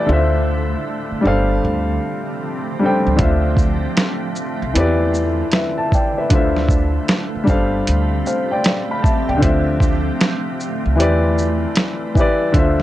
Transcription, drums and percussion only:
3.19 kick, closed hi-hat
3.57 kick, shaker
3.97 snare, closed hi-hat
4.36 shaker
4.76 closed hi-hat
5.14 shaker
5.52 snare, closed hi-hat
5.92 kick, shaker
6.30 kick, closed hi-hat
6.57 snare
6.69 kick, shaker
7.08 snare, closed hi-hat
7.47 kick, shaker
7.87 closed hi-hat
8.26 shaker
8.64 snare, closed hi-hat
9.04 kick, shaker
9.42 kick, closed hi-hat
9.80 kick, shaker
10.21 snare, closed hi-hat
10.60 shaker
11.00 closed hi-hat
11.38 shaker
11.76 snare, closed hi-hat
12.15 kick, shaker
12.54 kick, closed hi-hat

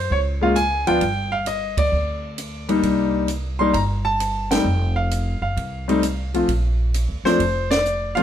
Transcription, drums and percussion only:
0.11 kick
0.56 hi-hat pedal, ride
0.87 ride
1.01 kick, ride
1.46 hi-hat pedal, ride
1.77 kick, ride
2.38 hi-hat pedal, ride
2.69 ride
2.83 kick, ride
3.28 hi-hat pedal, ride
3.74 kick, ride
4.20 hi-hat pedal, ride
4.51 snare, ride
5.11 hi-hat pedal, ride
5.57 kick, ride
5.89 ride
6.03 hi-hat pedal, ride
6.34 ride
6.48 kick, ride
6.94 hi-hat pedal, ride
7.25 snare
7.40 kick, ride
7.71 snare, ride
7.85 hi-hat pedal
8.17 ride

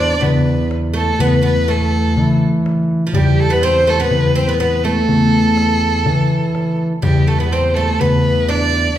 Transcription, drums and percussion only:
0.22 darbuka dum
0.47 darbuka ka
0.71 darbuka tek
0.83 darbuka ka
1.20 darbuka dum
1.69 darbuka tek
1.93 darbuka ka
2.04 darbuka ka
2.17 darbuka dum
2.41 darbuka ka
2.66 darbuka tek
2.77 darbuka ka
2.89 darbuka ka
3.13 darbuka dum
3.27 darbuka ka
3.62 darbuka tek
3.75 darbuka ka
3.87 darbuka ka
4.11 darbuka dum
4.36 darbuka ka
4.60 darbuka tek
4.72 darbuka ka
5.09 darbuka dum
5.21 darbuka ka
5.57 darbuka tek
5.82 darbuka ka
6.06 darbuka dum
6.30 darbuka ka
6.55 darbuka tek
6.67 darbuka ka
7.03 darbuka dum
7.16 darbuka ka
7.52 darbuka tek
7.65 darbuka ka
7.78 darbuka ka
8.01 darbuka dum
8.50 darbuka tek
8.62 darbuka ka

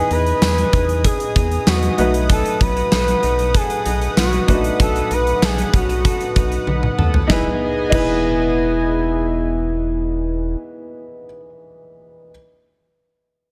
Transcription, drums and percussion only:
0.11 closed hi-hat
0.26 closed hi-hat
0.42 snare, tambourine
0.58 closed hi-hat
0.73 kick, closed hi-hat
0.89 closed hi-hat
1.05 kick, closed hi-hat
1.20 closed hi-hat
1.36 kick, closed hi-hat
1.51 closed hi-hat
1.67 snare, tambourine
1.82 closed hi-hat
1.98 closed hi-hat
2.14 closed hi-hat
2.29 kick, closed hi-hat
2.46 closed hi-hat
2.61 kick, closed hi-hat
2.77 closed hi-hat
2.92 snare, tambourine
3.08 closed hi-hat
3.23 closed hi-hat
3.39 closed hi-hat
3.55 kick, closed hi-hat
3.70 closed hi-hat
3.86 closed hi-hat
4.02 closed hi-hat
4.17 snare, tambourine
4.33 closed hi-hat
4.48 kick, closed hi-hat
4.64 closed hi-hat
4.80 kick, closed hi-hat
4.96 closed hi-hat
5.11 closed hi-hat
5.27 closed hi-hat
5.42 snare, tambourine
5.58 closed hi-hat
5.74 kick, closed hi-hat
5.90 closed hi-hat
6.05 kick, closed hi-hat
6.21 closed hi-hat
6.36 kick, closed hi-hat
6.52 closed hi-hat
6.67 high tom
6.83 mid tom
6.99 mid tom
7.14 floor tom
7.30 kick, snare
7.92 kick, crash

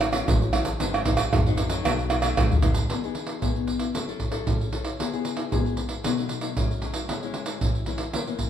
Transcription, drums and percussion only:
0.01 pandeiro, tamborim, shaker
0.13 pandeiro, tamborim, shaker
0.28 pandeiro, shaker, surdo
0.42 pandeiro, shaker
0.53 pandeiro, tamborim, shaker
0.65 pandeiro, shaker
0.80 pandeiro, shaker, surdo
0.94 pandeiro, tamborim, shaker
1.05 pandeiro, surdo
1.17 pandeiro, tamborim, shaker
1.33 pandeiro, tamborim, shaker, surdo
1.46 pandeiro, shaker
1.57 pandeiro, shaker
1.70 pandeiro, shaker
1.85 pandeiro, tamborim, shaker, surdo
1.99 pandeiro, shaker
2.10 pandeiro, tamborim, shaker
2.22 pandeiro, tamborim, shaker
2.37 pandeiro, tamborim, shaker, surdo
2.52 surdo, pandeiro, shaker
2.62 pandeiro, shaker, surdo
2.74 pandeiro, shaker, surdo
2.90 pandeiro, surdo
3.04 pandeiro
3.15 pandeiro
3.27 pandeiro
3.42 pandeiro, surdo
3.56 pandeiro
3.67 pandeiro
3.79 pandeiro
3.95 pandeiro, surdo
4.09 pandeiro
4.20 pandeiro, surdo
4.32 pandeiro
4.47 pandeiro, surdo
4.61 pandeiro
4.73 pandeiro
4.85 pandeiro
5.00 pandeiro, surdo
5.14 pandeiro
5.25 pandeiro
5.37 pandeiro
5.52 pandeiro, surdo
5.66 pandeiro
5.77 pandeiro
5.89 pandeiro
6.04 pandeiro, surdo
6.18 pandeiro
6.29 pandeiro
6.41 pandeiro
6.57 pandeiro, surdo
6.71 pandeiro
6.82 pandeiro
6.94 pandeiro
7.09 pandeiro, surdo
7.23 pandeiro
7.34 pandeiro
7.46 pandeiro
7.61 pandeiro, surdo
7.75 pandeiro
7.86 pandeiro
7.98 pandeiro
8.13 pandeiro, surdo
8.27 pandeiro
8.39 pandeiro, surdo

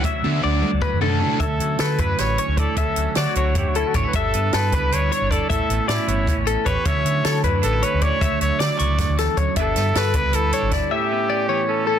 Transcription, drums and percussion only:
0.04 kick, closed hi-hat
0.24 high tom
0.63 mid tom
0.82 kick, mid tom
1.01 floor tom
1.40 kick, closed hi-hat
1.60 closed hi-hat
1.79 snare, closed hi-hat
1.98 kick, closed hi-hat
2.18 snare, closed hi-hat
2.38 closed hi-hat
2.57 kick, closed hi-hat
2.77 kick, closed hi-hat
2.96 closed hi-hat
3.15 snare, closed hi-hat
3.35 closed hi-hat
3.55 kick, closed hi-hat
3.75 closed hi-hat
3.94 kick, closed hi-hat
4.13 kick, closed hi-hat
4.34 closed hi-hat
4.53 snare, closed hi-hat
4.72 kick, closed hi-hat
4.92 closed hi-hat
5.12 closed hi-hat
5.31 kick, closed hi-hat
5.50 kick, closed hi-hat
5.70 closed hi-hat
5.89 snare, closed hi-hat
6.08 closed hi-hat
6.27 kick, closed hi-hat
6.47 closed hi-hat
6.66 kick, closed hi-hat
6.85 kick, closed hi-hat
7.06 closed hi-hat
7.25 snare, closed hi-hat
7.44 kick, closed hi-hat
7.63 closed hi-hat
7.83 closed hi-hat
8.01 kick, closed hi-hat
8.21 kick, closed hi-hat
8.41 closed hi-hat
8.60 snare, closed hi-hat
8.79 closed hi-hat
8.98 kick, snare, closed hi-hat
9.18 snare, closed hi-hat
9.37 kick, closed hi-hat
9.56 kick, closed hi-hat
9.76 snare, closed hi-hat
9.95 snare, closed hi-hat
10.14 kick, closed hi-hat
10.33 closed hi-hat
10.53 closed hi-hat
10.71 kick, snare, closed hi-hat

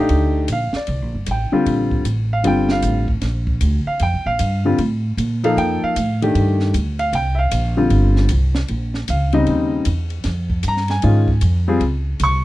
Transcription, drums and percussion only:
0.09 ride
0.48 hi-hat pedal, ride
0.73 snare
0.87 ride
1.26 hi-hat pedal, ride
1.66 ride
1.91 kick
2.05 hi-hat pedal, ride
2.44 ride
2.69 snare
2.82 hi-hat pedal, ride
3.08 kick
3.21 snare, ride
3.47 kick
3.61 hi-hat pedal, ride
3.99 ride
4.39 hi-hat pedal, ride
4.78 ride
5.18 hi-hat pedal, ride
5.44 ride
5.58 ride
5.96 hi-hat pedal, ride
6.22 ride
6.35 ride
6.60 snare
6.74 hi-hat pedal, ride
6.99 ride
7.13 ride
7.51 hi-hat pedal, ride
7.90 ride
8.16 snare
8.29 hi-hat pedal, ride
8.55 snare
8.68 ride
8.94 snare
9.08 hi-hat pedal, ride
9.32 ride
9.47 ride
9.85 hi-hat pedal, ride
10.10 ride
10.24 snare, ride
10.50 kick
10.63 hi-hat pedal, ride
10.77 snare
10.88 snare, ride
11.02 ride
11.28 kick
11.41 hi-hat pedal, ride
11.81 ride
12.20 hi-hat pedal, ride

